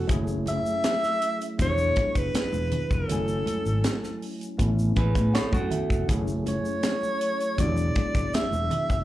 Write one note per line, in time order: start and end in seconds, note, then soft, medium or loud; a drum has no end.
0.00 0.08 A3 medium
0.00 0.11 B3 medium
0.00 0.09 C#4 medium
0.00 0.10 E4 medium
0.00 0.11 G#5 medium
0.07 0.58 F#1 loud
0.07 1.55 F#3 medium
0.07 1.56 A3 medium
0.07 1.56 C#4 medium
0.07 1.57 E4 medium
0.07 1.57 G#4 medium
0.07 kick loud
0.07 closed hi-hat medium
0.07 low conga medium
0.07 shaker medium
0.27 muted conga soft
0.27 shaker medium
0.46 1.56 E5 loud
0.46 closed hi-hat medium
0.46 high conga medium
0.46 shaker soft
0.66 shaker soft
0.84 snare loud
0.84 closed hi-hat medium
0.84 muted conga soft
0.84 shaker medium
1.03 snare soft
1.03 muted conga soft
1.03 shaker soft
1.22 closed hi-hat medium
1.41 closed hi-hat soft
1.41 shaker medium
1.58 1.91 E1 medium
1.58 3.06 F#3 medium
1.58 3.06 B3 medium
1.58 3.06 D4 medium
1.58 3.07 E4 medium
1.58 1.67 G4 medium
1.58 kick medium
1.58 closed hi-hat medium
1.58 muted conga soft
1.58 high conga medium
1.58 low conga medium
1.58 shaker medium
1.62 2.19 C#5 loud
1.68 3.11 G#4 medium
1.78 shaker medium
1.96 muted fingered electric bass stroke soft
1.96 kick medium
1.96 closed hi-hat medium
1.96 high conga medium
2.15 2.32 F#1 medium
2.15 2.95 B4 medium
2.15 kick medium
2.15 closed hi-hat medium
2.15 shaker soft
2.34 muted fingered electric bass stroke soft
2.34 snare loud
2.34 closed hi-hat medium
2.34 muted conga soft
2.34 shaker medium
2.52 2.70 E1 medium
2.52 muted conga soft
2.52 high conga medium
2.52 shaker soft
2.71 closed hi-hat medium
2.71 low conga medium
2.91 3.07 F1 medium
2.91 4.42 A4 medium
2.91 kick medium
2.91 shaker soft
3.08 3.42 F#1 medium
3.08 4.56 F#3 medium
3.08 4.56 A3 medium
3.08 4.57 C#4 medium
3.08 4.57 E4 medium
3.08 closed hi-hat medium
3.08 muted conga soft
3.08 low conga medium
3.08 shaker medium
3.12 4.58 G#5 medium
3.28 muted conga soft
3.28 shaker medium
3.46 closed hi-hat medium
3.46 high conga medium
3.46 shaker soft
3.66 3.82 G#1 medium
3.66 shaker soft
3.84 snare loud
3.84 closed hi-hat medium
3.84 shaker medium
4.04 snare soft
4.04 muted conga soft
4.04 shaker soft
4.22 open hi-hat soft
4.41 closed hi-hat soft
4.41 shaker soft
4.58 4.91 A1 loud
4.58 6.06 A3 medium
4.58 6.06 B3 medium
4.58 6.07 C#4 medium
4.58 6.07 E4 medium
4.58 kick medium
4.58 closed hi-hat medium
4.58 muted conga soft
4.58 high conga medium
4.58 low conga medium
4.58 shaker medium
4.79 shaker medium
4.96 5.13 A1 medium
4.96 5.33 G#4 medium
4.96 5.32 B4 medium
4.96 5.32 G#5 medium
4.96 kick medium
4.96 closed hi-hat medium
4.96 high conga medium
5.15 5.32 A2 medium
5.15 kick loud
5.15 closed hi-hat medium
5.15 shaker soft
5.34 5.52 A4 medium
5.34 5.52 C#5 medium
5.34 5.69 F#5 medium
5.34 muted fingered electric bass stroke soft
5.34 snare loud
5.34 closed hi-hat medium
5.34 shaker medium
5.52 5.69 F#2 medium
5.52 6.07 F#4 medium
5.52 6.07 A4 medium
5.52 kick loud
5.52 muted conga soft
5.52 high conga medium
5.52 shaker soft
5.71 6.06 E5 medium
5.71 closed hi-hat medium
5.71 low conga medium
5.90 6.07 F1 medium
5.90 kick medium
5.90 shaker soft
6.08 6.57 F#1 loud
6.08 7.55 F#3 medium
6.08 7.56 A3 medium
6.08 7.56 C#4 medium
6.08 7.57 E4 medium
6.08 7.57 G#4 medium
6.08 kick loud
6.08 closed hi-hat medium
6.08 muted conga soft
6.08 low conga medium
6.08 shaker medium
6.28 muted conga soft
6.28 shaker medium
6.46 7.62 C#5 medium
6.46 closed hi-hat medium
6.46 high conga medium
6.46 shaker soft
6.65 shaker soft
6.83 snare loud
6.83 closed hi-hat medium
6.83 muted conga soft
6.83 shaker medium
7.03 muted conga soft
7.03 shaker soft
7.21 closed hi-hat medium
7.40 closed hi-hat soft
7.40 shaker soft
7.57 7.91 E1 loud
7.57 9.04 F#3 medium
7.57 9.04 B3 medium
7.57 9.04 D4 medium
7.57 9.04 E4 medium
7.57 7.67 G4 medium
7.57 8.36 D5 medium
7.57 kick medium
7.57 closed hi-hat medium
7.57 muted conga soft
7.57 high conga medium
7.57 low conga medium
7.57 shaker medium
7.68 9.04 G#4 medium
7.77 shaker medium
7.95 muted fingered electric bass stroke soft
7.95 kick medium
7.95 closed hi-hat medium
7.95 high conga medium
8.15 8.31 F#1 medium
8.15 kick loud
8.15 closed hi-hat medium
8.15 shaker soft
8.33 9.04 E5 loud
8.33 muted fingered electric bass stroke soft
8.33 snare loud
8.33 closed hi-hat medium
8.33 muted conga soft
8.33 shaker medium
8.51 8.68 E1 medium
8.51 high conga medium
8.51 shaker soft
8.71 closed hi-hat medium
8.71 low conga medium
8.90 9.04 F1 medium
8.90 kick medium
8.90 shaker soft